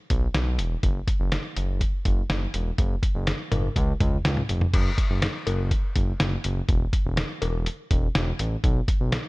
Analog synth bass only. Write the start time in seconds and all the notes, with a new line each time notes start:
0.10 B1
0.34 B1
0.59 E1
0.83 F#1
1.20 F#1
1.56 F#1
2.05 F#1
2.29 F#1
2.54 E1
2.78 F#1
3.15 F#1
3.52 F#1
3.76 C#2
4.01 C#2
4.25 C#2
4.49 F1
4.74 F#1
5.10 F#1
5.47 F#1
5.96 F#1
6.20 F#1
6.44 F#1
6.69 E1
7.05 E1
7.42 E1
7.91 E1
8.15 E1
8.39 A1
8.64 B1
9.00 B1